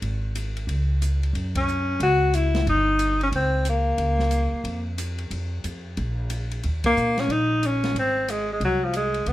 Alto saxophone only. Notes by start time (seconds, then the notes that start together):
1.57 C#4
2.03 F#4
2.35 E4
2.69 D#4
3.23 C#4
3.35 C4
3.69 A#3
6.86 A#3
7.20 C#4
7.31 D#4
7.66 C#4
7.99 C4
8.30 G#3
8.53 G#3
8.65 F#3
8.84 F3
8.96 G#3
9.28 B3